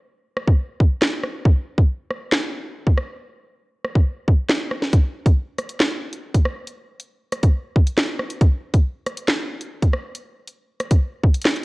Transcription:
0.37 cross-stick medium
0.48 kick loud
0.80 kick loud
1.02 snare loud
1.02 clap medium
1.24 cross-stick loud
1.45 kick loud
1.78 kick loud
2.11 cross-stick medium
2.32 snare loud
2.32 clap medium
2.87 kick loud
2.97 cross-stick loud
3.85 cross-stick medium
3.95 kick loud
4.28 kick loud
4.50 snare loud
4.50 clap medium
4.71 cross-stick loud
4.82 snare medium
4.93 kick loud
4.93 closed hi-hat medium
5.26 kick loud
5.26 closed hi-hat medium
5.58 cross-stick medium
5.58 closed hi-hat medium
5.69 closed hi-hat medium
5.80 snare loud
5.80 clap medium
6.13 closed hi-hat medium
6.34 kick medium
6.34 closed hi-hat medium
6.45 cross-stick loud
6.67 closed hi-hat medium
7.00 closed hi-hat medium
7.32 cross-stick medium
7.32 closed hi-hat medium
7.43 kick loud
7.43 closed hi-hat medium
7.76 kick loud
7.87 closed hi-hat medium
7.98 snare loud
7.98 clap medium
8.19 cross-stick loud
8.30 closed hi-hat medium
8.41 kick loud
8.41 closed hi-hat medium
8.74 kick loud
8.74 closed hi-hat medium
9.06 cross-stick medium
9.06 closed hi-hat medium
9.17 closed hi-hat medium
9.28 snare loud
9.28 clap medium
9.61 closed hi-hat medium
9.82 kick medium
9.82 closed hi-hat medium
9.93 cross-stick loud
10.15 closed hi-hat medium
10.48 closed hi-hat medium
10.80 cross-stick medium
10.80 closed hi-hat medium
10.91 kick loud
10.91 closed hi-hat medium
11.24 kick loud
11.34 closed hi-hat medium
11.42 snare loud
11.42 clap medium
11.42 closed hi-hat medium
11.49 closed hi-hat medium
11.56 closed hi-hat medium

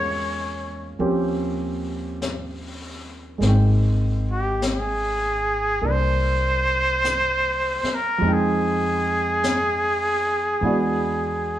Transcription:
0.00 0.96 E2 medium
0.00 1.00 G#3 soft
0.00 0.98 A#3 soft
0.00 0.99 C#4 soft
0.00 0.99 F4 soft
0.00 1.02 G#4 soft
0.00 0.99 C#5 medium
0.99 3.38 D#2 medium
0.99 3.41 F3 soft
0.99 3.39 A#3 soft
0.99 3.41 C4 soft
0.99 3.42 C#4 soft
0.99 3.42 G4 soft
0.99 brush sweep soft
2.22 brush sweep soft
2.22 snare soft
2.22 hi-hat pedal soft
3.38 5.78 G#1 medium
3.38 8.19 G#3 soft
3.38 5.80 A#3 soft
3.38 brush sweep soft
3.38 snare soft
3.43 8.22 C4 soft
3.43 8.25 D#4 soft
3.49 8.27 G5 soft
4.31 4.64 G4 medium
4.62 brush sweep soft
4.62 snare soft
4.62 hi-hat pedal soft
4.71 5.92 G#4 medium
5.82 7.80 C2 medium
5.82 8.23 A#3 soft
5.82 8.25 D4 soft
5.82 brush sweep soft
5.91 7.96 C5 medium
7.04 brush sweep soft
7.04 snare soft
7.04 hi-hat pedal medium
7.83 muted upright bass stroke soft
7.83 snare soft
7.95 8.34 A#4 medium
8.18 10.58 F2 medium
8.18 10.60 F3 medium
8.18 10.61 G#3 soft
8.24 10.63 C4 soft
8.24 10.64 D#4 soft
8.24 brush sweep soft
8.29 10.66 G5 medium
8.33 11.59 G#4 medium
9.43 brush sweep soft
9.43 snare soft
9.43 hi-hat pedal medium
10.61 11.59 E2 medium
10.61 11.59 E3 soft
10.61 11.59 G#3 soft
10.61 11.59 B3 soft
10.61 11.59 D4 soft
10.61 brush sweep soft
10.65 11.59 F#4 medium

